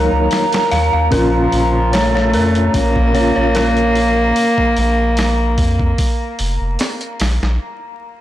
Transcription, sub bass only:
0.12 0.29 C#2 medium
0.72 0.91 D#2 medium
0.93 1.10 D#2 medium
1.12 1.48 A#1 loud
1.53 2.36 A#1 medium
2.34 2.70 F2 loud
2.74 3.32 A#1 medium
3.37 4.33 A#1 medium
4.78 5.60 A#1 loud
5.58 5.94 F2 medium
6.39 6.58 F1 loud
6.61 6.77 F1 medium
7.20 7.39 A#1 medium
7.42 7.59 A#1 medium

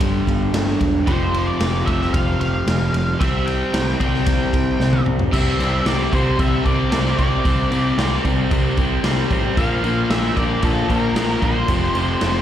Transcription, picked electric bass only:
0.01 0.22 G1 medium
0.27 0.48 G1 medium
0.53 0.74 G1 medium
0.81 1.02 E1 medium
1.07 1.50 F1 medium
1.60 1.81 F1 medium
1.87 2.08 F1 medium
2.14 2.35 F1 medium
2.40 2.61 F1 medium
2.67 2.88 F1 medium
2.93 3.14 F1 medium
3.21 3.63 C2 medium
3.74 3.95 C2 medium
4.01 4.22 C2 medium
4.27 4.48 C2 medium
4.53 4.74 C2 medium
4.80 5.01 C2 medium
5.07 5.28 C2 medium
5.33 5.53 C2 loud
5.60 5.80 C2 medium
5.86 6.06 C2 medium
6.13 6.33 C2 medium
6.39 6.59 C2 medium
6.66 6.86 C2 medium
6.92 7.12 C2 loud
7.19 7.39 C2 loud
7.45 7.65 C2 medium
7.71 7.91 C2 medium
7.98 8.18 C2 medium
8.25 8.45 C2 medium
8.51 8.71 C2 medium
8.77 8.98 C2 medium
9.04 9.25 C2 medium
9.31 9.51 A1 loud
9.57 9.77 A#1 medium
9.84 10.04 A#1 medium
10.10 10.30 A#1 medium
10.37 10.57 A#1 medium
10.63 10.83 A#1 medium
10.90 11.10 A#1 medium
11.15 11.36 A#1 loud
11.43 11.63 A#1 medium
11.68 11.89 F1 loud
11.95 12.15 F1 medium
12.21 12.42 F1 medium

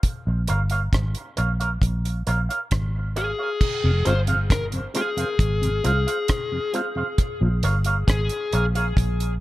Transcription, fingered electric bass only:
0.27 0.46 A#1 medium
0.50 0.89 G1 medium
0.93 1.13 G#1 medium
1.38 1.78 A#1 medium
1.82 2.22 A#1 loud
2.27 2.47 A#1 medium
2.72 3.32 G#1 medium
3.84 4.04 F1 loud
4.07 4.86 G1 medium
5.39 5.80 G#1 medium
5.85 6.05 C2 medium
7.42 7.61 A#1 medium
7.63 8.03 G1 medium
8.08 8.28 G#1 medium
8.53 8.93 A#1 medium
8.97 9.37 A#1 loud

